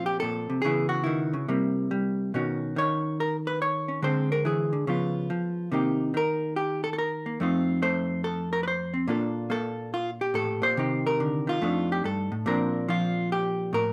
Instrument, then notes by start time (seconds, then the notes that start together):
hollow-body jazz guitar
Already playing: A#2 F3 A3 C4
0.06 G4
0.20 A#2 A4
0.50 C3
0.62 C#3 E3 B3 G#4
0.66 E4
0.89 F#4
1.04 D#3 E4
1.33 C#3
1.48 C3 G3 A#3
1.91 G3
2.34 B2 D#3 C#4 F#4
2.76 D#3 C#5
3.20 A#4
3.47 B4
3.62 C#5
3.88 C#4
4.02 D3 G#3 C4 C5
4.32 A#4
4.45 E3 G#4
4.73 D3
4.87 C#3 F3 B3 F4
5.30 F3
5.72 C3 D#3 A#3 D#4 G4
6.14 D#3 A#4
6.56 G4
6.84 A4
6.93 A4
6.98 A#4
7.26 A#3
7.40 F2 A3 C4 D#4 F4
7.82 A3 C5
8.24 A4
8.53 A#4
8.63 B4
8.68 C5
8.94 C4
9.08 A#2 A#3 D4 F4 A4
9.50 A#3 A4
9.94 F4
10.21 G4
10.34 A2 A4
10.62 A#2 C5
10.77 C3 D#3 D#4 G4
11.07 A#4
11.20 D3
11.47 D#3 F4
11.62 F2 A3 D4 D#4
11.92 G4
12.04 G2 A4
12.32 A2
12.46 A#2 F3 C4 D4 A#4
12.88 F3 F4
13.32 G4
13.73 A2 A#4